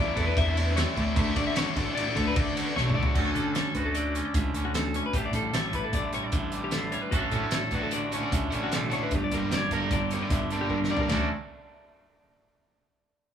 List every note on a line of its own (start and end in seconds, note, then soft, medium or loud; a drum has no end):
0.00 0.11 A1 loud
0.00 0.19 A3 medium
0.00 0.18 D4 medium
0.00 0.14 E4 medium
0.00 0.17 D5 medium
0.15 0.31 E2 medium
0.15 0.59 A3 medium
0.15 0.56 D4 medium
0.15 0.54 E4 medium
0.15 0.27 A4 medium
0.15 kick medium
0.15 ride medium
0.27 0.37 B4 medium
0.37 0.82 E2 loud
0.37 0.57 E5 loud
0.37 kick loud
0.37 ride loud
0.55 0.77 D4 medium
0.55 0.77 E4 medium
0.55 0.66 C#5 medium
0.55 ride medium
0.59 0.76 A3 medium
0.66 0.76 B4 medium
0.75 1.14 A2 medium
0.75 1.15 D3 loud
0.75 1.00 A3 loud
0.75 0.99 D4 loud
0.75 0.95 E4 loud
0.75 0.97 C#5 medium
0.75 snare loud
0.75 ride loud
0.96 1.12 D2 medium
0.96 1.18 D4 medium
0.96 1.15 E4 medium
0.96 1.06 D5 medium
0.96 kick medium
0.96 ride medium
1.00 1.17 A3 medium
1.06 1.17 C#5 medium
1.16 1.31 D2 loud
1.16 1.54 D3 loud
1.16 1.38 A3 loud
1.16 1.37 D4 medium
1.16 1.36 E5 medium
1.16 kick loud
1.16 ride loud
1.20 1.34 F#4 loud
1.36 1.66 D3 medium
1.36 1.54 A3 medium
1.36 1.56 D4 medium
1.36 1.57 F#4 medium
1.36 1.46 D5 medium
1.36 kick medium
1.36 snare soft
1.36 ride medium
1.47 1.56 E5 medium
1.55 1.95 D3 medium
1.55 1.79 A3 loud
1.55 1.78 D4 loud
1.55 1.75 F#4 loud
1.55 1.76 C#5 medium
1.55 snare loud
1.55 ride loud
1.76 2.06 A1 medium
1.76 2.16 D4 medium
1.76 2.14 F#4 medium
1.76 1.86 D5 medium
1.76 kick medium
1.76 snare soft
1.76 ride medium
1.80 2.18 A3 medium
1.86 1.95 C#5 medium
1.95 2.15 D5 medium
1.95 snare soft
1.95 ride loud
2.15 2.31 D2 loud
2.15 2.58 A3 medium
2.15 2.57 D4 medium
2.15 2.55 F#4 medium
2.15 2.26 A4 medium
2.15 kick medium
2.15 ride medium
2.27 2.36 B4 medium
2.36 2.66 D3 medium
2.36 2.56 D5 medium
2.36 kick loud
2.36 ride loud
2.56 2.75 A3 medium
2.56 2.77 D4 medium
2.56 2.77 F#4 medium
2.56 2.66 C#5 medium
2.56 snare soft
2.56 ride medium
2.66 2.76 B4 medium
2.76 2.94 B1 medium
2.76 3.14 D3 loud
2.76 2.98 A3 medium
2.76 2.97 D4 loud
2.76 2.94 F#4 loud
2.76 2.95 C#5 medium
2.76 snare medium
2.89 mid tom medium
2.95 3.13 C#2 medium
2.95 3.15 D4 medium
2.95 3.14 F#4 medium
2.95 3.05 D5 medium
2.99 3.16 A3 medium
2.99 floor tom loud
3.05 3.15 C#5 medium
3.15 3.30 D2 medium
3.15 4.73 D2 medium
3.15 3.95 D3 medium
3.15 3.36 C#4 medium
3.15 3.25 F#4 medium
3.15 3.75 F#4 medium
3.15 3.56 A4 medium
3.15 kick loud
3.15 crash loud
3.25 3.35 C#5 medium
3.35 3.65 D3 medium
3.35 4.14 C#4 medium
3.35 3.55 A4 medium
3.35 kick medium
3.35 closed hi-hat medium
3.55 5.37 A4 medium
3.55 3.74 C#5 medium
3.55 snare loud
3.55 closed hi-hat medium
3.74 4.19 D2 medium
3.74 5.12 F#4 medium
3.74 3.84 B4 medium
3.74 kick medium
3.74 closed hi-hat medium
3.86 3.95 A4 medium
3.95 4.34 D3 medium
3.95 4.15 D5 medium
3.95 closed hi-hat medium
4.15 4.55 C#4 medium
4.15 4.25 C#5 medium
4.15 closed hi-hat medium
4.25 4.35 D5 medium
4.34 4.49 C#2 medium
4.34 5.92 D3 medium
4.34 4.55 E5 medium
4.34 kick loud
4.34 closed hi-hat loud
4.53 4.99 D2 medium
4.53 4.93 C#4 medium
4.53 4.65 C#5 medium
4.53 closed hi-hat medium
4.65 4.74 F#4 medium
4.74 5.14 D2 medium
4.74 4.95 A4 medium
4.74 snare loud
4.74 closed hi-hat medium
4.94 5.12 C#4 medium
4.94 5.05 C#5 medium
4.94 closed hi-hat medium
5.06 5.15 B4 medium
5.13 5.29 A1 medium
5.13 5.93 A2 medium
5.13 5.25 G4 medium
5.13 kick loud
5.13 closed hi-hat medium
5.26 5.35 D5 medium
5.33 5.48 A1 medium
5.33 6.12 G3 medium
5.33 5.54 A4 medium
5.33 kick medium
5.33 closed hi-hat medium
5.53 5.69 A1 medium
5.53 7.14 A4 medium
5.53 5.74 C#5 medium
5.53 snare loud
5.53 closed hi-hat medium
5.72 5.88 A1 medium
5.72 7.10 E4 medium
5.72 5.84 B4 medium
5.72 kick medium
5.72 closed hi-hat medium
5.84 5.94 A4 medium
5.93 6.23 A1 medium
5.93 6.32 D3 medium
5.93 6.14 D5 medium
5.93 kick loud
5.93 closed hi-hat medium
6.13 6.52 G3 medium
6.13 6.24 C#5 medium
6.13 closed hi-hat medium
6.24 6.34 D5 medium
6.32 6.93 A1 medium
6.32 7.10 D3 medium
6.32 6.53 E5 medium
6.32 kick loud
6.32 closed hi-hat medium
6.52 6.92 G3 medium
6.52 6.63 D5 medium
6.52 closed hi-hat medium
6.64 6.73 G4 medium
6.71 7.10 A2 medium
6.71 6.92 A4 medium
6.71 snare loud
6.71 closed hi-hat medium
6.92 7.13 G3 medium
6.92 7.02 C#5 medium
6.92 closed hi-hat medium
7.02 7.12 B4 medium
7.11 7.28 A1 medium
7.11 7.92 A2 medium
7.11 7.92 D3 soft
7.11 7.33 C#4 medium
7.11 7.22 F#4 medium
7.11 7.73 F#4 medium
7.11 7.54 A4 medium
7.11 kick loud
7.11 closed hi-hat medium
7.22 7.31 C#5 medium
7.31 7.62 A2 medium
7.31 7.59 D3 medium
7.31 7.59 A3 medium
7.31 8.13 C#4 medium
7.31 7.59 D4 medium
7.31 7.59 F#4 medium
7.31 7.52 A4 medium
7.31 kick medium
7.31 closed hi-hat medium
7.51 9.17 A4 medium
7.51 7.72 C#5 medium
7.51 snare loud
7.51 closed hi-hat loud
7.71 8.17 A1 medium
7.71 7.99 A3 medium
7.71 7.99 D4 medium
7.71 7.99 F#4 medium
7.71 7.82 B4 medium
7.71 kick medium
7.71 closed hi-hat medium
7.75 8.00 D3 medium
7.75 9.10 F#4 medium
7.83 7.93 A4 medium
7.91 8.32 D3 medium
7.91 8.13 D5 medium
7.91 closed hi-hat medium
8.12 8.39 D3 medium
8.12 8.38 A3 medium
8.12 8.53 C#4 medium
8.12 8.38 D4 medium
8.12 8.38 F#4 medium
8.12 8.23 C#5 medium
8.12 closed hi-hat medium
8.23 8.33 D5 medium
8.32 8.47 C#2 loud
8.32 9.91 D3 medium
8.32 8.54 E5 medium
8.32 kick loud
8.32 closed hi-hat loud
8.51 8.97 A1 medium
8.51 8.78 D3 medium
8.51 8.78 A3 medium
8.51 9.11 C#4 medium
8.51 8.78 D4 medium
8.51 8.77 F#4 medium
8.51 8.63 C#5 medium
8.51 closed hi-hat medium
8.64 8.73 F#4 medium
8.72 8.93 B2 medium
8.72 8.92 A4 medium
8.72 snare loud
8.72 closed hi-hat medium
8.90 9.11 D3 medium
8.90 9.12 A3 medium
8.90 9.11 D4 medium
8.90 9.11 F#4 medium
8.90 9.02 C#5 medium
8.90 snare soft
8.90 closed hi-hat medium
8.95 9.13 A2 medium
9.03 9.14 B4 medium
9.11 9.26 G1 loud
9.11 10.68 G2 medium
9.11 9.23 G4 medium
9.11 kick loud
9.11 closed hi-hat medium
9.24 9.33 D5 medium
9.31 9.46 G1 medium
9.31 9.58 D3 medium
9.31 9.58 G3 medium
9.31 10.12 G3 medium
9.31 9.58 A#3 medium
9.31 9.58 D4 medium
9.31 9.53 A#4 medium
9.31 kick medium
9.31 closed hi-hat medium
9.51 9.66 G1 loud
9.51 9.73 D5 medium
9.51 snare loud
9.51 closed hi-hat medium
9.55 9.73 C#5 medium
9.71 9.86 G1 medium
9.71 9.98 D3 medium
9.71 9.98 G3 medium
9.71 9.97 A#3 medium
9.71 9.97 D4 medium
9.71 9.83 A#4 medium
9.71 11.09 A#4 medium
9.71 kick medium
9.71 closed hi-hat medium
9.83 9.92 A4 medium
9.90 10.21 G1 medium
9.90 10.32 D3 medium
9.90 10.12 D5 medium
9.90 kick loud
9.90 closed hi-hat medium
10.11 10.38 D3 medium
10.11 10.51 G3 medium
10.11 10.38 G3 medium
10.11 10.38 A#3 medium
10.11 10.38 D4 medium
10.11 10.22 C#5 medium
10.11 closed hi-hat medium
10.22 10.32 D5 medium
10.30 10.90 G1 loud
10.30 11.10 D3 medium
10.30 10.51 E5 medium
10.30 kick loud
10.30 snare soft
10.30 closed hi-hat medium
10.50 10.77 D3 medium
10.50 10.89 G3 medium
10.50 10.78 G3 medium
10.50 10.78 A#3 medium
10.50 10.77 D4 medium
10.50 10.61 D5 medium
10.50 closed hi-hat medium
10.61 10.70 G4 medium
10.69 11.07 G2 medium
10.69 10.90 A#4 medium
10.69 kick medium
10.84 snare medium
10.90 11.10 D3 medium
10.90 11.10 G3 medium
10.90 11.10 A#3 loud
10.90 11.10 D4 loud
10.90 11.01 D5 medium
10.97 11.10 A#4 medium
10.97 floor tom loud
11.08 11.28 D2 medium
11.08 11.29 D3 medium
11.08 11.27 D3 loud
11.08 11.27 F#3 medium
11.08 11.29 C#4 medium
11.08 11.28 D5 medium
11.08 snare medium
11.08 floor tom loud
11.08 ride bell medium
11.12 11.27 A3 loud
11.12 11.27 D4 loud
11.12 11.30 F#4 medium
11.12 11.30 A4 medium